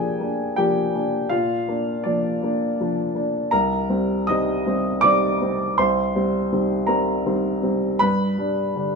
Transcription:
Already playing: A#2 F3 A#3 D4 G4 G#4 G5 G#5
0.20 A#3 D4
0.56 F3 A#3 D4 G4 G5
0.95 A#3 D4
1.29 A#2 F4 F5
1.68 A#3 D4
2.04 F3 A#3 D4 D5
2.43 A#3 D4
2.81 F3 A#3 D4
3.15 A#3 D4
3.51 C2 A#4 A#5
3.89 G3 C4
4.27 D#3 G3 C4 D#5 D#6
4.66 G3 C4
5.01 D#3 G3 C4 D5 D6
5.41 G3 C4
5.78 C2 C5 C6
6.15 G3 C4
6.52 D#3 G3 C4
6.87 G3 C4 A#4 A#5
7.26 D#3 G3 C4
7.63 G3 C4
7.99 G2 B4 B5
8.38 G3 D4
8.76 D3 G3 D4

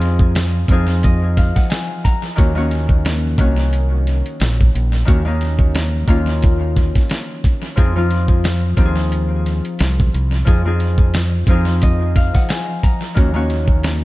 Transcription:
Already playing: F2 F3 C4 D#4 G#4
0.02 closed hi-hat
0.19 kick
0.35 snare, closed hi-hat
0.68 F2 F3 C4 D#4 G#4 C5, kick, closed hi-hat
1.03 D#5, kick, closed hi-hat
1.37 F5, kick, closed hi-hat
1.56 F#5, kick, snare, closed hi-hat
1.70 G#5, snare, closed hi-hat
2.04 A#5, kick, closed hi-hat
2.35 D#2 D#3 A#3 C#4 F#4, kick, closed hi-hat
2.55 D#3 A#3 C#4 F#4
2.71 closed hi-hat
2.89 kick
3.05 snare, closed hi-hat
3.38 C2 D#3 A#3 C#4 F#4, kick, closed hi-hat
3.73 closed hi-hat
4.07 closed hi-hat
4.26 closed hi-hat
4.40 A#1, snare, closed hi-hat
4.61 kick
4.75 A#1, closed hi-hat
5.05 D#2 D#3 A#3 C#4 F#4, kick, closed hi-hat
5.25 D#3 A#3 C#4 D#4
5.41 closed hi-hat
5.59 kick
5.75 snare, closed hi-hat
6.07 D#2 D#3 A#3 C#4 F4, kick, closed hi-hat
6.42 kick, closed hi-hat
6.77 kick, closed hi-hat
6.95 kick, snare, closed hi-hat
7.10 snare, closed hi-hat
7.44 kick, closed hi-hat
7.76 F2 F3 C4 D#4 G#4, kick, closed hi-hat
7.96 F3 C4 D#4 F4
8.11 closed hi-hat
8.28 kick
8.44 snare, closed hi-hat
8.77 D#2 F3 C4 D#4 G4, kick, closed hi-hat
8.85 G#4
9.12 closed hi-hat
9.46 closed hi-hat
9.65 closed hi-hat
9.79 C2, snare, closed hi-hat
10.00 kick
10.14 C2, closed hi-hat
10.45 F2 F3 C4 D#4 G#4, kick, closed hi-hat
10.65 F3 C4 D#4 G#4
10.80 closed hi-hat
10.98 kick
11.14 snare, closed hi-hat
11.47 F2 F3 C4 D#4 C5, kick, closed hi-hat
11.51 G#4
11.82 D#5, kick, closed hi-hat
12.15 F5, kick, closed hi-hat
12.34 F#5, kick, snare, closed hi-hat
12.49 G#5, snare, closed hi-hat
12.83 A#5, kick, closed hi-hat
13.14 D#2 D#3 A#3 C#4 F#4, kick, closed hi-hat
13.34 D#3 A#3 C#4 F#4
13.50 closed hi-hat
13.68 kick
13.83 snare, closed hi-hat

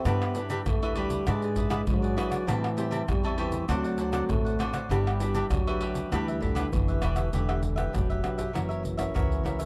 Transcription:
0.05 G2 G3 B3 D4 E4 G4 B4 E5, pandeiro, tamborim, low agogo, shaker, surdo
0.22 pandeiro, tamborim, shaker
0.35 D4 E4 G4 B4 E5, pandeiro, shaker
0.50 D4 G4 B4 E5, pandeiro, low agogo, shaker
0.66 D2 D3 A3, pandeiro, tamborim, high agogo, shaker, surdo
0.82 D4 E4 G4 B4 E5, pandeiro, high agogo, shaker
0.96 G3 D4 G4 B4 E5, pandeiro, high agogo
1.10 pandeiro, shaker
1.27 G#2 G#3 D4 E4 G#4 B4 D5, pandeiro, tamborim, low agogo, shaker, surdo
1.42 G#4 B4 D5, pandeiro, shaker
1.56 E4 G#4 B4 D5, pandeiro, shaker, surdo
1.70 D4 E4 G#4 B4 D5, pandeiro, tamborim, shaker
1.87 G#2 F#3 G#3, pandeiro, high agogo, shaker, surdo
2.02 G#4 B4 D5, pandeiro, shaker
2.16 D4 E4 G#4 B4 D5, pandeiro, tamborim, high agogo, shaker
2.30 G#4 B4 D5, pandeiro, tamborim, shaker
2.46 A2 E3 G3 C4 E4 G4 C5 E5 A5, pandeiro, tamborim, low agogo, shaker, surdo
2.64 pandeiro, tamborim, shaker
2.76 G3 C4 E4 G4 C5 E5 A5, pandeiro, shaker
2.91 G4 C5 E5 A5, pandeiro, low agogo, shaker
3.07 E2 E3 G3, pandeiro, tamborim, high agogo, shaker, surdo
3.23 G3 C4 E4 C5 E5 A5, pandeiro, high agogo, shaker
3.38 E3 G4 C5 E5 A5, pandeiro, high agogo
3.52 pandeiro, shaker
3.68 D2 D3 F#3 A3 C4 D4 F#4 C5 D5 F#5, pandeiro, tamborim, low agogo, shaker, surdo
3.84 C5 D5 F#5, pandeiro, shaker
3.98 D4 C5 D5 F#5, pandeiro, shaker
4.12 A3 C4 D4 F#4 C5 D5 F#5, pandeiro, tamborim, shaker
4.29 D2 A2 A3, pandeiro, high agogo, shaker, surdo
4.45 C5 D5 F#5, pandeiro, shaker
4.59 A3 C4 D4 F#4 C5 D5 F#5, pandeiro, tamborim, high agogo, shaker
4.74 C5 D5 F#5, pandeiro, tamborim, shaker
4.89 G1 G3 D4 E4 G4 B4 E5, pandeiro, tamborim, low agogo, shaker, surdo
5.07 pandeiro, tamborim, shaker
5.20 D4 E4 G4 B4 E5, pandeiro, shaker
5.35 D4 G4 B4 E5, pandeiro, low agogo, shaker
5.50 D2 D3 F#3, pandeiro, tamborim, high agogo, shaker, surdo
5.67 D4 E4 G4 B4 E5, pandeiro, high agogo, shaker
5.81 D4 G4 B4 E5, pandeiro, high agogo
5.95 pandeiro, shaker
6.04 F#3
6.12 D2 E3 G3 D4 E4 G4 B4 E5, pandeiro, tamborim, low agogo, shaker, surdo
6.28 G4 B4 E5, pandeiro, shaker
6.41 D3 D4 G4 B4 E5, pandeiro, surdo
6.55 D4 E4 G4 B4 E5, pandeiro, tamborim, shaker
6.72 F#1 D3 E3, pandeiro, high agogo, shaker, surdo
6.88 G4 B4 E5, pandeiro, shaker
7.02 E1 D4 E4 G4 B4 E5, pandeiro, tamborim, high agogo, shaker
7.16 G4 B4 E5, pandeiro, tamborim, shaker
7.33 E1 D3 E3 D4 G4 B4 E5, pandeiro, shaker, surdo
7.49 G4 B4 E5, pandeiro, tamborim, shaker
7.62 muted cavaquinho stroke, pandeiro, shaker, surdo
7.76 D4 G4 B4 E5, pandeiro, tamborim, shaker, surdo
7.93 F1 B2 F#3 D4 G4 B4 E5, pandeiro, tamborim, shaker, surdo
8.10 G4 B4 E5, pandeiro, shaker
8.24 D4 G4 B4, pandeiro, tamborim, shaker
8.38 G4 B4 E5, pandeiro, shaker, surdo
8.53 F#1 E3 F#3 C#4 E4 F#4 A#4 C#5 E5, pandeiro, tamborim, shaker, surdo
8.69 A#4 C#5 E5, pandeiro, shaker
8.83 muted cavaquinho stroke, pandeiro, shaker, surdo
8.97 C#4 E4 A#4 C#5 E5, pandeiro, tamborim, shaker, surdo
9.14 C#2 C#3 E3 F#4 A#4 C#5 E5, pandeiro, tamborim, shaker, surdo
9.32 pandeiro, shaker
9.43 C#2 C#4 E4 F#4 A#4 C#5 E5, pandeiro, tamborim, shaker
9.59 A#4 C#5 E5, pandeiro, shaker

